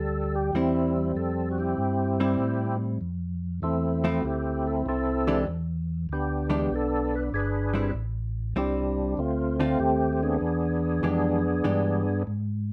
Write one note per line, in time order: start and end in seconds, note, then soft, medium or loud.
0.00 0.51 D2 medium
0.00 0.51 G3 medium
0.00 0.35 A4 loud
0.35 0.55 G4 medium
0.53 1.13 E2 medium
0.53 0.92 G3 medium
0.53 1.74 G3 medium
0.53 0.92 C4 medium
0.53 1.58 C4 medium
0.53 1.12 E4 loud
0.53 0.92 E4 medium
1.15 1.75 F2 medium
1.15 1.49 A4 medium
1.51 1.58 F#4 medium
1.58 2.77 C4 medium
1.58 2.78 E4 medium
1.58 2.77 G4 medium
1.77 2.37 G2 medium
2.20 2.97 G3 medium
2.20 2.97 C4 medium
2.20 2.97 E4 medium
2.38 2.98 A2 medium
3.01 3.60 F2 medium
3.62 4.22 E2 medium
3.62 4.82 A3 soft
3.62 4.24 C4 soft
3.62 4.21 E4 medium
4.04 4.22 F3 medium
4.04 4.22 A3 medium
4.04 4.22 C4 medium
4.04 4.22 E4 medium
4.21 4.83 D2 medium
4.21 4.25 F#4 medium
4.21 4.67 G4 medium
4.25 4.87 C4 medium
4.25 4.87 E4 medium
4.67 4.76 A4 medium
4.86 5.45 C2 medium
4.86 5.44 C4 medium
4.86 5.45 E4 medium
4.86 5.45 A4 medium
5.27 5.45 E3 medium
5.27 5.45 G#3 medium
5.27 5.46 D4 medium
5.27 5.46 G4 medium
5.47 6.07 E2 medium
6.09 6.69 D2 medium
6.09 7.30 B3 soft
6.09 6.73 D4 medium
6.09 6.74 G4 medium
6.50 6.68 E3 medium
6.50 6.68 G#3 medium
6.50 6.68 D4 medium
6.50 6.69 G4 medium
6.70 7.30 B1 medium
6.74 7.33 D4 medium
6.74 7.15 A4 loud
7.15 7.24 B4 medium
7.32 7.92 G1 medium
7.32 7.91 D4 medium
7.32 7.91 G#4 medium
7.32 7.91 B4 medium
7.74 7.92 G3 medium
7.74 7.92 C4 medium
7.74 7.92 E4 medium
7.94 8.54 A1 medium
8.56 9.15 C2 medium
8.56 9.17 G3 medium
8.56 9.14 G3 medium
8.56 9.18 C4 medium
8.56 9.20 D4 medium
8.56 9.18 E4 medium
9.17 9.77 D2 medium
9.17 10.37 A3 medium
9.17 10.37 C4 medium
9.17 9.56 F4 medium
9.60 9.77 D3 medium
9.60 9.77 A3 medium
9.60 9.78 C4 medium
9.60 9.80 F4 medium
9.60 9.78 F4 medium
9.79 10.39 D#2 medium
9.79 10.11 G4 loud
10.13 10.21 G4 medium
10.23 12.23 B3 medium
10.23 12.23 D4 medium
10.23 12.23 G#4 loud
10.41 11.00 E2 medium
11.03 11.62 F2 loud
11.03 11.40 E3 medium
11.03 11.40 G#3 medium
11.03 11.40 D4 medium
11.03 11.40 G4 medium
11.64 12.24 G2 medium
11.64 12.01 E3 medium
11.64 12.01 G#3 medium
11.64 12.01 D4 medium
11.64 12.02 G4 medium
12.27 12.73 G#2 medium